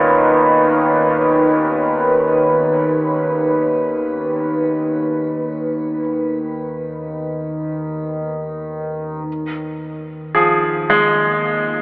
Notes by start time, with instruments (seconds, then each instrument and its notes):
Already playing: synth drone D#2 D#3, grand piano A#2, ambient pad D#4 B4 C#5
9.26 synth drone D#2 D#3
10.35 grand piano F3 G#4
10.90 grand piano G#3